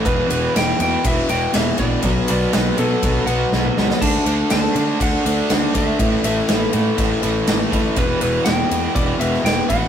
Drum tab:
CC |----------------|----------------|x---------------|----------------|
RD |x-x-x-x-x-x-x-x-|x-x-x-x-x-x-----|x-x-x-x-x-x-x-x-|x-x-x-x-x-x-x-x-|
SD |----o-------o---|----o-------o-oo|----o-------o---|----o-------o---|
T2 |----------------|-------------o--|----------------|----------------|
BD |o-------o-----o-|o-------o-------|o-------o-----o-|o-------o-----o-|

CC |----------------|
RD |x-x-x-x-x-x-x-x-|
SD |----o------oo---|
T2 |----------------|
BD |o-------o-----o-|